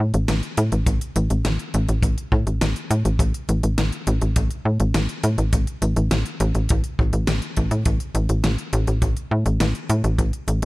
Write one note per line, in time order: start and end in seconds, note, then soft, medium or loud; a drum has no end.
0.00 0.12 A2 medium
0.14 0.27 A1 medium
0.14 closed hi-hat soft
0.28 0.42 A1 loud
0.28 snare loud
0.28 closed hi-hat medium
0.43 closed hi-hat soft
0.57 0.71 A2 medium
0.57 closed hi-hat medium
0.72 0.85 A1 medium
0.72 closed hi-hat soft
0.86 1.00 A1 loud
0.86 kick loud
0.86 closed hi-hat loud
1.01 closed hi-hat soft
1.16 1.29 A1 loud
1.16 closed hi-hat medium
1.30 1.44 A1 medium
1.30 closed hi-hat soft
1.45 1.58 A1 loud
1.45 snare loud
1.45 closed hi-hat medium
1.59 closed hi-hat soft
1.74 1.87 A1 medium
1.74 closed hi-hat medium
1.89 2.02 A1 medium
1.89 closed hi-hat soft
2.03 2.16 A1 loud
2.03 kick loud
2.03 closed hi-hat loud
2.18 closed hi-hat soft
2.32 2.45 A2 loud
2.32 kick loud
2.47 2.60 A1 medium
2.47 closed hi-hat soft
2.61 2.75 A1 loud
2.61 snare loud
2.61 closed hi-hat medium
2.76 closed hi-hat soft
2.90 3.04 A2 loud
2.90 closed hi-hat medium
3.05 3.18 A1 medium
3.05 closed hi-hat soft
3.19 3.33 A1 loud
3.19 kick loud
3.19 closed hi-hat medium
3.34 closed hi-hat soft
3.49 3.62 A1 medium
3.49 closed hi-hat medium
3.63 3.77 A1 medium
3.63 closed hi-hat soft
3.78 3.91 A1 loud
3.78 snare loud
3.78 closed hi-hat medium
3.92 closed hi-hat soft
4.07 4.20 A1 loud
4.07 closed hi-hat medium
4.22 4.35 A1 medium
4.22 closed hi-hat soft
4.36 4.49 A1 loud
4.36 kick loud
4.36 closed hi-hat loud
4.51 closed hi-hat soft
4.65 4.78 A2 medium
4.80 4.93 A1 medium
4.80 closed hi-hat soft
4.94 5.08 A1 loud
4.94 snare loud
4.94 closed hi-hat medium
5.09 closed hi-hat soft
5.23 5.37 A2 medium
5.23 closed hi-hat medium
5.38 5.51 A1 medium
5.38 closed hi-hat soft
5.53 5.66 A1 loud
5.53 kick loud
5.53 closed hi-hat medium
5.67 closed hi-hat soft
5.82 5.95 A1 medium
5.82 closed hi-hat medium
5.96 6.10 A1 medium
5.96 closed hi-hat soft
6.11 6.24 A1 loud
6.11 snare loud
6.11 closed hi-hat medium
6.26 closed hi-hat soft
6.40 6.53 A1 loud
6.40 closed hi-hat medium
6.55 6.68 A1 medium
6.55 closed hi-hat soft
6.69 6.83 A1 loud
6.69 kick loud
6.69 closed hi-hat medium
6.84 closed hi-hat soft
6.99 7.12 A1 medium
6.99 kick loud
7.13 7.26 A1 medium
7.13 closed hi-hat soft
7.27 7.41 A1 loud
7.27 snare loud
7.27 closed hi-hat medium
7.42 closed hi-hat soft
7.57 7.70 A1 medium
7.57 kick medium
7.57 closed hi-hat medium
7.71 7.84 A2 medium
7.71 closed hi-hat soft
7.86 7.99 A1 loud
7.86 kick loud
7.86 closed hi-hat medium
8.00 closed hi-hat soft
8.15 8.28 A1 loud
8.15 closed hi-hat medium
8.29 8.42 A1 medium
8.29 closed hi-hat soft
8.44 8.57 A1 loud
8.44 snare loud
8.44 closed hi-hat medium
8.58 closed hi-hat soft
8.73 8.86 A1 loud
8.73 closed hi-hat medium
8.87 9.01 A1 medium
8.87 closed hi-hat soft
9.02 9.15 A1 loud
9.02 kick loud
9.02 closed hi-hat medium
9.17 closed hi-hat soft
9.31 9.44 A2 medium
9.46 9.59 A1 medium
9.46 closed hi-hat soft
9.60 9.74 A1 loud
9.60 snare loud
9.60 closed hi-hat medium
9.75 closed hi-hat soft
9.90 10.03 A2 medium
9.90 closed hi-hat medium
10.04 10.17 A1 medium
10.04 closed hi-hat soft
10.18 10.32 A1 loud
10.18 kick loud
10.18 closed hi-hat medium
10.33 closed hi-hat soft
10.48 10.61 A1 medium
10.48 closed hi-hat medium